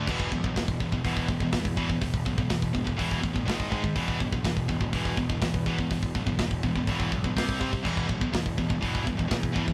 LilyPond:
<<
  \new Staff \with { instrumentName = "Distorted electric guitar" } { \clef bass \time 4/4 \key e \major \tempo 4 = 123 <e, b, e>8 <e, b,>16 <e, b,>16 <e, b,>8 <e, b,>16 <e, b,>16 <e, b, e>8 <e, b,>16 <e, b,>16 <e, b,>8 <e, b, e>16 <e, b,>16 | <e, b,>8 <e, b,>16 <e, b,>16 <e, b,>8 <e, b,>16 <e, b,>16 <e, b, e>8 <e, b,>16 <e, b,>16 <gis, dis gis>8 <gis, dis gis>16 <gis, dis>16 | <e, b, e>8 <e, b,>16 <e, b,>16 <e, b,>8 <e, b,>16 <e, b,>16 <e, b, e>8 <e, b,>16 <e, b,>16 <e, b,>8 <e, b, e>16 <e, b,>16 | <e, b,>8 <e, b,>16 <e, b,>16 <e, b,>8 <e, b,>16 <e, b,>16 <e, b, e>8 <e, b,>16 <e, b,>16 <c g c'>8 <c g c'>16 <c g>16 |
<e, b, e>8 <e, b,>16 <e, b,>16 <e, b,>8 <e, b,>16 <e, b,>16 <e, b, e>8 <e, b,>16 <e, b,>16 <e, b,>8 <e, b, e>16 <e, b,>16 | }
  \new Staff \with { instrumentName = "Picked electric bass" } { \clef bass \time 4/4 \key e \major e,,8 b,,8 e,,8 e,,8 e,,8 e,,8 e,8 e,8 | e,,8 b,,8 e,,8 e,,8 e,,8 a,,8 gis,,8 gis,8 | e,,8 b,,8 e,,8 e,,8 e,,8 e,,8 e,8 e,8 | e,,8 b,,8 e,,8 e,,8 e,,8 b,,8 c,8 c8 |
e,,8 b,,8 e,,8 e,,8 e,,8 e,,8 e,8 e,8 | }
  \new DrumStaff \with { instrumentName = "Drums" } \drummode { \time 4/4 <cymc bd>16 bd16 bd16 bd16 <hho bd sn>16 bd16 bd16 bd16 <hho bd>16 bd16 bd16 bd16 <hho bd sn>16 bd16 bd16 bd16 | <hho bd>16 bd16 bd16 bd16 <hho bd sn>16 bd16 bd16 bd16 <hho bd>16 bd16 bd16 bd16 <hho bd sn>16 bd16 bd16 bd16 | <hho bd>16 bd16 bd16 bd16 <hho bd sn>16 bd16 bd16 bd16 <hho bd>16 bd16 bd16 bd16 <hho bd sn>16 bd16 bd16 bd16 | <hho bd>16 bd16 bd16 bd16 <hho bd sn>16 bd16 bd16 bd16 <hho bd>16 bd16 bd16 bd16 <hho bd sn>16 bd16 bd16 bd16 |
<cymc bd>16 bd16 bd16 bd16 <hho bd sn>16 bd16 bd16 bd16 <hho bd>16 bd16 bd16 bd16 <hho bd sn>16 bd16 bd16 bd16 | }
>>